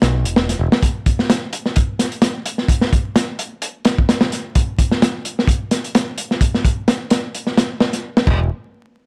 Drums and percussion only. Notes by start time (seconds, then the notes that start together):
0.02 snare, closed hi-hat
0.25 closed hi-hat
0.36 snare
0.49 snare, closed hi-hat
0.72 snare
0.83 kick, closed hi-hat
1.06 kick, closed hi-hat
1.19 snare
1.30 snare, closed hi-hat
1.53 closed hi-hat
1.66 snare
1.76 kick, closed hi-hat
1.99 snare, closed hi-hat
2.12 closed hi-hat
2.22 snare, closed hi-hat
2.46 closed hi-hat
2.58 snare
2.69 kick, closed hi-hat
2.81 snare
2.93 kick, closed hi-hat
3.16 snare, closed hi-hat
3.39 closed hi-hat
3.62 closed hi-hat
3.85 snare, closed hi-hat
3.98 kick
4.09 snare, closed hi-hat
4.21 snare
4.32 snare, closed hi-hat
4.55 kick, closed hi-hat
4.79 kick, closed hi-hat
4.91 snare
5.02 snare, closed hi-hat
5.25 closed hi-hat
5.39 snare
5.47 kick, closed hi-hat
5.71 snare, closed hi-hat
5.84 closed hi-hat
5.95 snare, closed hi-hat
6.18 closed hi-hat
6.31 snare
6.41 kick, closed hi-hat
6.54 snare
6.65 kick, closed hi-hat
6.88 snare, closed hi-hat
7.10 snare, closed hi-hat
7.35 closed hi-hat
7.47 snare
7.57 snare, closed hi-hat
7.80 snare
7.93 snare, closed hi-hat
8.17 snare
8.27 kick, china